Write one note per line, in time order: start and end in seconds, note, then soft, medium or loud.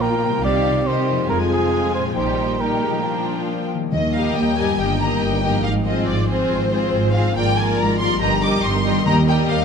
0.00 0.36 A#2 soft
0.00 0.42 A#2 soft
0.00 0.40 F3 soft
0.00 0.39 A#3 soft
0.00 0.40 A#3 soft
0.00 0.40 F4 soft
0.00 0.41 F4 soft
0.00 0.44 A#4 medium
0.00 0.43 G5 soft
0.25 1.22 C3 soft
0.30 1.24 G3 soft
0.34 1.19 C4 soft
0.39 1.28 D#4 soft
0.43 0.83 C2 soft
0.43 1.25 C3 soft
0.43 0.83 D#3 soft
0.43 0.83 G3 soft
0.43 0.84 C4 soft
0.43 0.84 G4 soft
0.43 0.88 D5 medium
0.43 0.86 F5 soft
0.86 1.29 D#3 soft
0.86 1.29 G3 soft
0.86 1.29 C4 soft
0.86 1.29 G4 soft
0.86 1.29 C5 medium
0.86 1.28 D#5 soft
1.11 2.09 F2 soft
1.15 2.11 G#3 soft
1.20 2.14 C4 soft
1.24 2.16 F4 soft
1.29 1.70 F1 soft
1.29 2.16 F2 soft
1.29 2.17 F3 soft
1.29 2.15 G#3 soft
1.29 2.15 C4 soft
1.29 2.17 F4 soft
1.29 1.39 A#4 medium
1.29 2.15 G#5 soft
1.51 1.94 G#4 soft
1.95 2.85 A#2 soft
1.95 2.05 C5 soft
2.03 3.00 G3 soft
2.08 2.94 A#3 soft
2.12 3.04 D#4 soft
2.16 2.58 A#1 soft
2.16 3.69 A#2 soft
2.16 2.60 D#3 soft
2.16 2.60 G3 soft
2.16 2.60 D#4 soft
2.16 2.60 G4 soft
2.16 2.62 C5 medium
2.16 3.68 G5 soft
2.61 3.04 D#3 soft
2.61 2.83 G3 soft
2.61 3.04 D#4 soft
2.61 3.04 G4 soft
2.61 3.49 A#4 soft
2.83 3.85 A#2 soft
2.83 3.05 G#3 soft
2.91 3.88 F3 soft
2.96 3.82 A#3 soft
3.00 3.92 D4 soft
3.05 3.71 F3 soft
3.05 3.73 A#3 soft
3.05 3.73 D4 soft
3.05 3.73 F4 soft
3.74 4.71 D#3 soft
3.78 4.63 G3 soft
3.83 4.67 A#3 soft
3.87 4.72 D#4 soft
3.92 4.31 D#2 soft
3.92 4.53 D#3 soft
3.92 4.13 D#5 medium
4.14 4.56 G3 soft
4.14 4.57 G4 soft
4.14 4.57 A#4 soft
4.14 4.57 D#5 soft
4.14 4.36 F5 medium
4.35 4.74 D#2 soft
4.35 4.57 G5 medium
4.57 5.57 G2 soft
4.57 4.79 G3 soft
4.57 4.78 G4 soft
4.57 4.78 A#4 soft
4.57 4.78 D#5 soft
4.57 4.79 G#5 medium
4.64 5.59 G3 soft
4.69 5.61 A#3 soft
4.73 5.64 D#4 soft
4.78 5.16 G1 soft
4.78 5.17 G2 soft
4.78 4.99 A#3 soft
4.78 4.99 G4 soft
4.78 4.99 A#4 soft
4.78 4.99 D#5 soft
4.78 5.00 G5 medium
4.99 5.42 A#3 soft
4.99 5.42 G4 soft
4.99 5.42 A#4 soft
4.99 5.42 D#5 soft
4.99 5.21 A#5 medium
5.21 5.59 G1 soft
5.21 5.59 G2 soft
5.21 5.64 G5 medium
5.43 7.16 G#2 soft
5.43 5.64 A#3 soft
5.43 5.64 G4 soft
5.43 5.64 A#4 soft
5.43 5.64 D#5 soft
5.49 7.20 F3 soft
5.54 7.32 C4 soft
5.58 8.20 F4 soft
5.64 6.02 G#1 soft
5.64 6.02 G#2 soft
5.64 5.72 F5 medium
5.85 6.28 C4 soft
5.85 6.28 F4 soft
5.85 6.26 G#4 soft
5.85 6.26 C5 soft
5.85 6.07 D#5 medium
6.07 6.45 G#1 soft
6.07 6.45 G#2 soft
6.07 6.28 D5 medium
6.27 6.70 C4 soft
6.27 6.70 F4 soft
6.27 6.70 G#4 soft
6.27 6.70 C5 soft
6.27 7.13 C5 medium
6.50 6.88 G#1 soft
6.50 6.88 G#2 soft
6.71 7.13 C4 soft
6.71 7.13 F4 soft
6.71 7.13 G#4 soft
6.71 7.13 C5 soft
6.93 7.31 G#1 soft
6.93 7.31 G#2 soft
7.14 8.13 G#2 soft
7.14 7.35 C4 soft
7.14 7.34 F4 soft
7.14 7.36 G#4 soft
7.14 7.36 C5 soft
7.14 7.36 F5 medium
7.21 8.16 F3 soft
7.26 8.18 D4 soft
7.30 8.15 A#4 soft
7.35 7.74 G#1 soft
7.35 7.74 G#2 soft
7.35 7.55 A#3 soft
7.35 7.55 F4 soft
7.35 7.56 A#4 soft
7.35 7.56 D5 soft
7.35 7.57 G5 medium
7.57 7.99 A#3 soft
7.57 7.99 F4 soft
7.57 7.99 A#4 soft
7.57 7.99 D5 soft
7.57 7.79 G#5 medium
7.78 8.16 G#1 soft
7.78 8.17 G#2 soft
7.78 8.00 A#5 medium
7.99 8.99 G2 soft
7.99 8.21 A#3 soft
7.99 8.21 F4 soft
7.99 8.20 A#4 soft
7.99 8.22 D5 soft
7.99 8.21 C6 medium
8.08 8.91 G3 soft
8.12 8.96 D#4 soft
8.17 9.00 A#4 soft
8.21 8.59 G1 medium
8.21 8.59 G2 soft
8.21 8.41 G3 soft
8.21 8.41 G4 soft
8.21 8.41 A#4 soft
8.21 8.41 D#5 soft
8.21 8.42 A#5 medium
8.42 8.84 G3 soft
8.42 8.84 G4 soft
8.42 8.83 A#4 soft
8.42 8.83 D#5 soft
8.42 8.64 D6 medium
8.63 9.01 G1 medium
8.63 9.01 G2 soft
8.63 9.06 C6 medium
8.84 9.65 D#3 soft
8.84 9.04 G3 soft
8.84 9.04 G4 soft
8.84 9.04 A#4 soft
8.84 9.05 D#5 soft
8.92 9.65 G3 soft
8.97 9.65 D#4 soft
9.01 9.65 A#4 soft
9.05 9.43 D#2 soft
9.05 9.44 D#2 medium
9.05 9.65 D#3 medium
9.05 9.26 G3 soft
9.05 9.26 G4 soft
9.05 9.25 A#4 soft
9.05 9.26 D#5 soft
9.05 9.14 A#5 medium
9.26 9.65 G3 soft
9.26 9.65 G4 soft
9.26 9.65 A#4 soft
9.26 9.65 D#5 soft
9.26 9.36 G5 medium
9.48 9.65 D#2 medium
9.48 9.65 D#2 soft
9.48 9.65 F5 medium